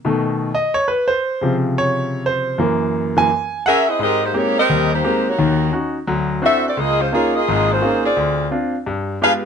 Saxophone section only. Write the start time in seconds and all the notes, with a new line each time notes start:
3.67 C#4 G#4 A#4 E5
3.88 C4 E4 G#4 D#5
4.02 C4 G4 A#4 D#5
4.24 A#3 D#4 G4 C5
4.37 A#3 D#4 G4 C#5
4.58 C4 G4 A#4 D#5
4.93 A#3 D#4 G4 C5
5.28 A#3 D#4 F#4 C#5
6.45 C4 F#4 A4 E5
6.68 C4 F#4 A4 D5
6.79 A#3 F4 G#4 D#5
7.01 G#3 C#4 F4 C5
7.14 A#3 F4 G#4 C#5
7.35 A#3 F4 G#4 D#5
7.71 A#3 F4 G#4 C5
8.05 C4 F4 G#4 D5
9.23 D4 G#4 B4 F5